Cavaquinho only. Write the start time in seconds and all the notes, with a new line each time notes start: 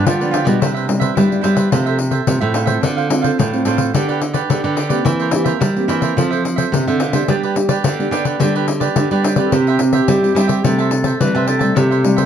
0.04 F4 G4 B4 D5
0.19 G4 B4 D5
0.31 F4 G4 B4 D5
0.45 G4 B4 D5
0.60 E4 B4 C5 E5
0.74 B4 C5 E5
0.87 muted cavaquinho stroke
1.00 B4 C5 E5
1.15 E4 B4 C5 E5
1.41 E4 B4 C5 E5
1.55 B4 C5 E5
1.71 F4 A4 C5 E5
1.86 A4 C5 E5
1.98 muted cavaquinho stroke
2.11 A4 C5 E5
2.41 A4 C5 E5
2.54 F4 A4 C5 E5
2.66 A4 C5 E5
2.81 D4 A4 C5 F5
2.96 A4 C5 F5
3.09 muted cavaquinho stroke
3.22 A4 C5 F5
3.38 D4 A4 C5 F5
3.65 D4 A4 C5 F5
3.77 A4 C5 F5
3.93 D4 G4 B4 D5
4.08 G4 B4 D5
4.21 muted cavaquinho stroke
4.33 G4 B4 D5
4.64 G4 B4 D5
4.76 D4 G4 B4 D5
4.89 G4 B4 D5
5.05 E4 A#4 C5 E5
5.20 A#4 C5 E5
5.31 muted cavaquinho stroke
5.44 A#4 C5 E5
5.60 E4 A#4 C5 E5
5.88 E4 A#4 C5 E5
6.01 A#4 C5 E5
6.16 F4 A4 C5 E5
6.31 A4 C5 E5
6.43 muted cavaquinho stroke
6.56 A4 C5 E5
6.88 A4 C5 E5
7.00 F4 A4 C5 E5
7.13 A4 C5 E5
7.28 D4 G4 B4 D5
7.43 G4 B4 D5
7.56 muted cavaquinho stroke
7.69 G4 B4 D5
7.85 D4 G4 B4 D5
8.11 D4 G4 B4 D5
8.25 G4 B4 D5
8.40 D4 G4 B4 D5
8.55 G4 B4 D5
8.67 muted cavaquinho stroke
8.80 G4 B4 D5
9.12 G4 B4 D5
9.23 D4 G4 B4 D5
9.37 G4 B4 D5
9.53 E4 G4 C5 E5
9.68 G4 C5 E5
9.93 G4 C5 E5
10.08 E4 G4 C5 E5
10.36 E4 G4 C5 E5
10.48 G4 C5 E5
10.65 G4 C5 E5 A5
10.78 C5 E5 A5
10.91 muted cavaquinho stroke
11.04 C5 E5 A5
11.35 C5 E5 A5
11.46 G4 C5 E5 A5
11.59 C5 E5 A5
11.75 E4 A4 C5 E5
11.90 A4 C5 E5
12.04 muted cavaquinho stroke
12.16 A4 C5 E5